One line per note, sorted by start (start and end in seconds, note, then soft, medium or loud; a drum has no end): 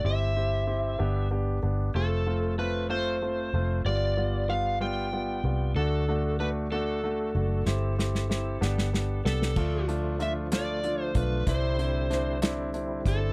0.04 0.95 G1 medium
0.04 0.30 C4 medium
0.04 0.30 E4 medium
0.04 0.31 G4 medium
0.04 1.28 E5 medium
0.36 0.62 C4 medium
0.36 0.62 E4 medium
0.36 0.62 G4 medium
0.67 0.93 C4 medium
0.67 0.93 E4 medium
0.67 0.94 G4 medium
0.99 1.59 G1 medium
0.99 1.25 B3 medium
0.99 1.25 D4 medium
0.99 1.26 G4 medium
1.31 1.57 B3 medium
1.31 1.57 D4 medium
1.31 1.57 G4 medium
1.62 1.93 G1 medium
1.62 1.89 B3 medium
1.62 1.89 D4 medium
1.62 1.89 G4 medium
1.94 3.49 F1 medium
1.94 2.21 A3 medium
1.94 2.21 C4 medium
1.94 2.21 F4 medium
1.94 2.58 A4 medium
2.26 2.52 A3 medium
2.26 2.52 C4 soft
2.26 2.53 F4 medium
2.58 2.84 A3 medium
2.58 2.84 C4 medium
2.58 2.84 F4 medium
2.58 2.88 B4 medium
2.89 3.16 A3 medium
2.89 3.16 C4 medium
2.89 3.16 F4 medium
2.89 3.81 C5 medium
3.22 3.48 A3 medium
3.22 3.48 C4 medium
3.22 3.48 F4 medium
3.53 3.83 F1 medium
3.53 3.80 A3 medium
3.53 3.80 C4 medium
3.53 3.80 F4 medium
3.85 5.40 G1 medium
3.85 4.11 G3 medium
3.85 4.12 B3 medium
3.85 4.12 F4 medium
3.85 4.51 D5 medium
4.17 4.43 G3 medium
4.17 4.43 B3 medium
4.17 4.43 F4 medium
4.48 4.74 G3 medium
4.48 4.75 B3 medium
4.48 4.75 F4 medium
4.48 4.81 F5 medium
4.80 5.06 G3 medium
4.80 5.07 B3 medium
4.80 5.07 F4 medium
4.80 5.72 G5 medium
5.12 5.38 G3 medium
5.12 5.38 B3 medium
5.12 5.38 F4 medium
5.44 5.74 C2 medium
5.44 5.70 G3 medium
5.44 5.70 B3 medium
5.44 5.70 F4 medium
5.75 7.30 D2 medium
5.75 6.02 A3 medium
5.75 6.02 D4 medium
5.75 6.02 F#4 medium
5.75 6.40 A4 medium
6.08 6.34 A3 medium
6.08 6.34 D4 medium
6.08 6.34 F#4 medium
6.40 6.65 A3 medium
6.40 6.66 D4 medium
6.40 6.66 F#4 medium
6.40 6.48 B4 medium
6.72 6.97 A3 medium
6.72 6.97 D4 medium
6.72 6.98 F#4 medium
6.72 9.21 A4 medium
7.03 7.29 A3 medium
7.03 7.29 D4 soft
7.03 7.29 F#4 medium
7.35 7.64 F#1 medium
7.35 7.60 A3 medium
7.35 7.61 D4 soft
7.35 7.61 F#4 medium
7.66 8.57 G1 medium
7.66 7.92 C4 medium
7.66 7.92 E4 medium
7.66 7.92 G4 medium
7.66 snare soft
7.98 8.24 C4 medium
7.98 8.24 E4 medium
7.98 8.24 G4 medium
7.98 snare soft
8.15 snare soft
8.29 8.55 C4 medium
8.29 8.55 E4 medium
8.29 8.56 G4 medium
8.29 snare medium
8.61 9.21 G1 medium
8.61 8.87 B3 medium
8.61 8.87 D4 medium
8.61 8.87 G4 medium
8.61 snare medium
8.78 snare medium
8.93 9.19 B3 medium
8.93 9.19 D4 medium
8.93 9.19 G4 medium
8.93 snare medium
9.25 9.55 C2 medium
9.25 9.51 B3 medium
9.25 9.51 D4 soft
9.25 9.51 G4 medium
9.25 9.85 A4 medium
9.25 snare medium
9.42 snare medium
9.55 11.11 D2 medium
9.55 13.33 D3 soft
9.55 11.44 F3 soft
9.55 9.82 A3 medium
9.55 11.45 A3 soft
9.55 9.82 D4 medium
9.55 11.45 F4 medium
9.55 9.83 F4 medium
9.55 kick medium
9.55 crash medium
9.88 10.14 A3 medium
9.88 10.14 D4 medium
9.88 10.14 F4 medium
9.88 closed hi-hat soft
10.19 10.45 A3 medium
10.19 10.46 D4 medium
10.19 10.46 F4 medium
10.19 10.31 E5 medium
10.19 closed hi-hat soft
10.52 10.77 A3 medium
10.52 10.78 D4 medium
10.52 10.78 F4 medium
10.52 11.02 D5 medium
10.52 snare loud
10.52 closed hi-hat medium
10.83 11.09 A3 medium
10.83 11.09 D4 medium
10.83 11.10 F4 medium
10.83 closed hi-hat soft
11.02 11.18 C5 medium
11.15 11.45 B1 medium
11.15 11.41 A3 medium
11.15 11.41 D4 soft
11.15 11.41 F4 medium
11.15 11.45 B4 medium
11.15 kick medium
11.15 closed hi-hat soft
11.47 13.01 C2 medium
11.47 13.33 G3 soft
11.47 11.73 C4 medium
11.47 13.33 C4 soft
11.47 11.73 D4 medium
11.47 13.33 E4 medium
11.47 11.73 E4 medium
11.47 12.39 C5 medium
11.47 kick loud
11.47 closed hi-hat medium
11.78 12.04 C4 medium
11.78 12.05 D4 medium
11.78 12.05 E4 medium
11.78 closed hi-hat soft
12.10 12.36 C4 medium
12.10 12.36 D4 medium
12.10 12.36 E4 medium
12.10 snare soft
12.10 closed hi-hat soft
12.42 12.68 C4 medium
12.42 12.68 D4 medium
12.42 12.68 E4 medium
12.42 snare loud
12.42 closed hi-hat medium
12.73 12.99 C4 medium
12.73 13.00 D4 medium
12.73 13.00 E4 medium
12.73 closed hi-hat soft
13.05 13.33 G1 medium
13.05 13.31 C4 medium
13.05 13.31 D4 medium
13.05 13.32 E4 medium
13.05 13.33 A4 medium
13.05 kick medium
13.05 closed hi-hat soft